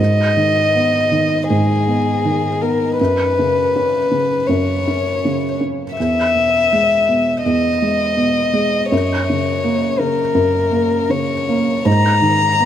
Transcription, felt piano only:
0.00 G#2
0.37 D#3
0.75 B3
1.12 D#3
1.50 G#2
1.87 B3
2.25 D#3
2.62 B3
3.01 F#2
3.39 C#3
3.76 C#4
4.11 C#3
4.49 F#2
4.88 C#4
5.25 C#3
5.61 C#4
6.00 E2
6.35 B2
6.73 G#3
7.09 B2
7.46 E2
7.82 G#3
8.17 B2
8.53 G#3
8.92 F#2
9.30 C#3
9.64 A#3
9.99 C#3
10.35 F#2
10.71 A#3
11.10 C#3
11.49 A#3
11.85 G#2
12.22 D#3
12.60 B3

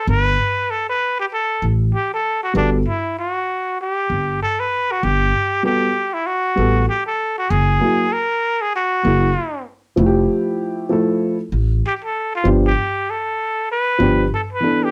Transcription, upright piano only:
2.54 G3 B3 F#4 A4
5.63 G3 B3 F#4 A4
6.56 G3 B3 F#4 A4
7.80 F#3 A#3 E4 G#4
9.03 F#3 A#3 E4 G#4
9.96 F3 A3 E4 F#4
10.06 G4
10.89 F3 A3 E4 A4
12.44 F3 B3 D4 G4
13.98 F3 B3 D4 G4
14.60 E3 B3 D4 A4

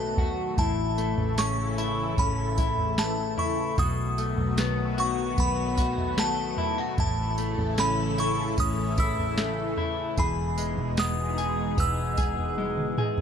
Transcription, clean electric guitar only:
Already playing: B2 A3 B3 F#4
0.18 F#4
0.58 A2 E4
0.98 A3
1.38 C#4
1.78 E4
2.18 C#4
2.58 E4
2.98 A3
3.38 E4
3.78 B2 F#4
4.18 A3
4.58 B3
4.98 F#4
5.38 B3
5.78 F#4
6.18 A3
6.58 E4
6.78 F#4
6.98 A2 E4
7.38 A3
7.78 C#4
8.18 E4
8.58 C#4
8.98 E4
9.38 A3
9.78 E4
10.18 E2 G#4
10.58 G#3
10.98 B3
11.38 G#4
11.78 B3
12.18 G#4
12.58 G#3
12.98 G#4

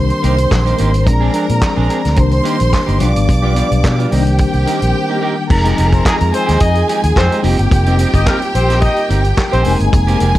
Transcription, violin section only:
Already playing: C5 C6
1.07 A#4 A#5
2.18 C5 C6
3.03 D5 D6
4.12 G4 G5
5.50 A#4 A#5
6.33 G#4 G#5
7.44 G4 G5
9.65 G#4 G#5

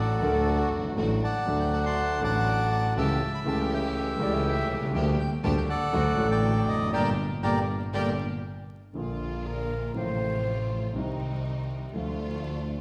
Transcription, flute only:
0.21 A#4
0.33 A4
0.59 F#4
4.21 D5
4.34 E5
4.46 E5
6.93 D5
7.43 D5
7.94 D5
8.96 F4
9.46 A#4
9.96 C5

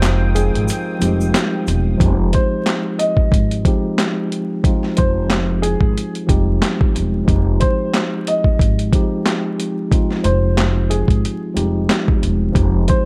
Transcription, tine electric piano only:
Already playing: F3 G#3 C4 D#4 F4 G4
0.99 F3 G3 C4 D#4 G4
1.06 G#3
1.98 F3 G#3 C4 D#4 G4
3.64 F3 G#3 C4 D#4 G4
4.63 F3 G#3 C4 D#4 F4
6.26 F3 G3 C4 D#4 G4
6.34 G#3
7.25 F3 G#3 C4 D#4 G4
8.92 F3 G#3 C4 D#4 G4
9.91 F3 G#3 C4 D#4 F4
11.54 F3 G3 C4 D#4 G4
11.61 G#3
12.52 F3 G#3 C4 D#4 G4

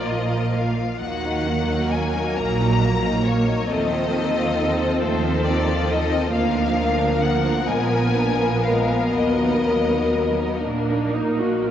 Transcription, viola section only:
Already playing: F3 A#3
1.03 F#3 A#3
3.71 F3 C4
6.33 A#3
7.66 B3
9.12 F#3
10.62 A#3 D4
11.12 D#4
11.41 F#4
11.65 F4

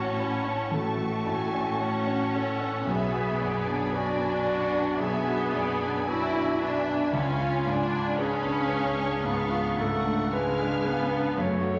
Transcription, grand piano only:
Already playing: A1 A2 C#4 F#4 C#5
0.20 C#5
0.45 C#4
0.71 A1
0.99 F#4
1.26 A2
1.54 C#4
1.80 C#5
2.07 C#4
2.36 C#5
2.61 C#4
2.86 B1
3.12 F#4
3.41 F#2
3.67 D4
3.93 B4
4.20 D4
4.46 B4
4.73 D4
4.99 B1
5.28 F#4
5.54 F#2
5.83 D4
6.08 B4
6.35 D4
6.61 B4
6.88 D4
7.13 C#2
7.40 F4
7.66 G#2
7.92 D4
8.18 B4
8.43 D4
8.69 B4
8.97 D4
9.24 G#2
9.51 F4
9.77 G#2
10.05 D4
10.33 B4
10.60 D4
10.85 B4
11.11 D4
11.37 F#2
11.61 F#4

